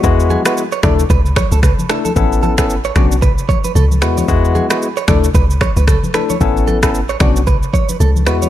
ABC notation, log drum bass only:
X:1
M:4/4
L:1/16
Q:"Swing 16ths" 1/4=113
K:Bdor
V:1 name="Log drum bass" clef=bass
E,,3 z3 D,,2 C,,3 C,,2 z3 | A,,,6 B,,,4 z2 C,,2 E,,2 | E,,3 z3 D,,2 C,,3 C,,2 z3 | A,,,6 B,,,4 z2 C,,2 E,,2 |]